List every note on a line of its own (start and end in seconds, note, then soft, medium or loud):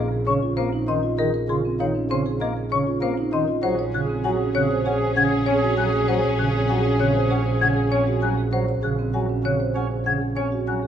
0.00 3.47 A#1 medium
0.00 0.16 G#4 medium
0.00 0.16 A#4 medium
0.12 0.31 G#4 medium
0.27 0.38 C#3 medium
0.27 0.47 C#4 medium
0.27 0.47 C#5 medium
0.27 0.33 C#6 loud
0.43 0.62 F4 medium
0.57 0.69 A#3 loud
0.57 0.77 C4 medium
0.57 0.77 C5 loud
0.57 0.64 F5 medium
0.73 0.92 D#4 medium
0.88 0.99 D#3 medium
0.88 1.08 C#4 medium
0.88 1.08 D#5 medium
0.88 0.94 C6 medium
1.03 1.23 F4 medium
1.18 1.30 D#3 loud
1.18 1.38 G#4 loud
1.18 1.38 A#4 loud
1.18 1.25 D#5 loud
1.34 1.54 A#4 loud
1.49 1.60 C#3 medium
1.49 1.69 F4 medium
1.49 1.69 G#4 medium
1.49 1.56 C6 medium
1.65 1.84 C4 medium
1.80 1.91 D#3 medium
1.80 2.00 D#4 loud
1.80 2.00 C#5 medium
1.80 1.86 F5 loud
1.95 2.15 C#4 medium
2.10 2.22 C#3 loud
2.10 2.30 C4 medium
2.10 2.30 C5 loud
2.10 2.17 C6 medium
2.26 2.46 G#4 loud
2.41 2.52 A#3 medium
2.41 2.61 G#4 medium
2.41 2.61 A#4 medium
2.41 2.47 D#5 medium
2.57 2.76 G#4 medium
2.72 2.83 C#3 medium
2.72 2.91 C#4 loud
2.72 2.92 C#5 medium
2.72 2.78 C#6 loud
2.87 3.07 F4 medium
3.01 3.13 A#3 loud
3.01 3.22 C4 medium
3.01 3.22 C5 loud
3.01 3.09 F5 medium
3.18 3.37 D#4 loud
3.32 3.44 D#3 medium
3.32 3.53 C#4 medium
3.32 3.53 D#5 medium
3.32 3.39 C6 medium
3.48 3.68 F4 medium
3.62 10.87 A#1 medium
3.62 3.74 F#3 loud
3.62 8.34 C#4 loud
3.62 3.86 G#4 soft
3.62 8.34 G#4 medium
3.62 3.83 C5 loud
3.62 3.70 F#5 loud
3.79 3.99 C#5 loud
3.94 4.05 C#3 medium
3.94 4.14 G#4 medium
3.94 4.17 G#4 medium
3.94 4.00 F#6 medium
4.09 4.29 C4 medium
4.24 4.36 F#3 medium
4.24 4.45 F#4 loud
4.24 4.49 G#4 medium
4.24 4.44 F#5 medium
4.24 4.31 G#5 loud
4.40 4.60 C#4 medium
4.55 4.67 C#3 loud
4.55 4.75 C4 medium
4.55 4.80 G#4 medium
4.55 4.75 C#5 loud
4.55 4.62 F#6 medium
4.71 4.90 C5 loud
4.86 4.97 C#4 medium
4.86 5.06 G#4 medium
4.86 5.12 G#4 medium
4.86 5.06 C#5 medium
4.86 4.92 F#5 medium
5.02 5.21 C5 medium
5.16 5.28 C#3 medium
5.16 5.36 C#4 loud
5.16 5.36 F#5 medium
5.16 5.23 G#6 loud
5.22 5.44 G#4 medium
5.32 5.52 G#4 medium
5.46 5.67 C4 medium
5.46 5.58 C#4 loud
5.46 5.67 C#5 loud
5.46 5.54 G#5 medium
5.53 5.75 G#4 loud
5.62 5.82 F#4 loud
5.77 5.89 F#3 medium
5.77 5.98 C#4 medium
5.77 5.97 G#5 medium
5.77 5.84 F#6 medium
5.85 6.07 G#4 loud
5.93 6.13 G#4 medium
6.08 6.20 F#3 loud
6.08 6.28 C5 loud
6.08 6.15 F#5 loud
6.16 6.39 G#4 medium
6.23 6.43 C#5 loud
6.38 6.50 C#3 medium
6.38 6.59 G#4 medium
6.38 6.45 F#6 medium
6.48 6.70 G#4 medium
6.54 6.74 C4 medium
6.69 6.81 F#3 medium
6.69 6.89 F#4 loud
6.69 6.89 F#5 medium
6.69 6.75 G#5 loud
6.80 7.02 G#4 medium
6.84 7.04 C#4 medium
6.99 7.11 C#3 loud
6.99 7.20 C4 medium
6.99 7.20 C#5 loud
6.99 7.06 F#6 medium
7.11 7.33 G#4 medium
7.15 7.35 C5 loud
7.30 7.42 C#4 medium
7.30 7.51 G#4 medium
7.30 7.37 F#5 medium
7.43 7.65 G#4 medium
7.43 7.66 C5 medium
7.61 7.73 C#3 medium
7.61 7.81 C#4 loud
7.61 7.81 F#5 medium
7.61 7.67 G#6 loud
7.75 7.97 G#4 medium
7.75 7.96 G#4 medium
7.91 8.12 C4 medium
7.91 8.03 C#4 loud
7.91 8.12 C#5 loud
7.91 7.98 G#5 medium
8.07 8.27 F#4 loud
8.07 8.29 G#4 soft
8.22 8.34 F#3 medium
8.22 8.42 C#4 medium
8.22 8.42 G#5 medium
8.22 8.29 F#6 medium
8.38 8.58 G#4 medium
8.52 8.64 F#3 loud
8.52 8.73 C5 loud
8.52 8.59 F#5 medium
8.69 8.88 C#5 loud
8.83 8.95 C#3 medium
8.83 9.03 G#4 medium
8.83 9.04 G#4 medium
8.83 8.90 F#6 medium
8.99 9.19 C4 medium
9.14 9.26 F#3 medium
9.14 9.34 F#4 medium
9.14 9.34 F#5 medium
9.14 9.20 G#5 medium
9.29 9.49 C#4 medium
9.44 9.56 C#3 loud
9.44 9.65 C4 medium
9.44 9.65 C#5 medium
9.44 9.51 F#6 medium
9.60 9.80 C5 medium
9.75 9.87 C#4 medium
9.75 9.96 G#4 medium
9.75 9.96 C#5 medium
9.75 9.82 F#5 medium
9.91 10.11 C5 medium
10.06 10.17 C#3 medium
10.06 10.26 C#4 medium
10.06 10.26 F#5 medium
10.06 10.12 G#6 medium
10.22 10.41 G#4 medium
10.36 10.57 C4 medium
10.36 10.48 C#4 medium
10.36 10.57 C#5 medium
10.36 10.43 G#5 medium
10.52 10.72 F#4 medium
10.67 10.79 F#3 medium
10.67 10.87 C#4 medium
10.67 10.87 G#5 medium
10.67 10.74 F#6 medium
10.82 10.87 G#4 medium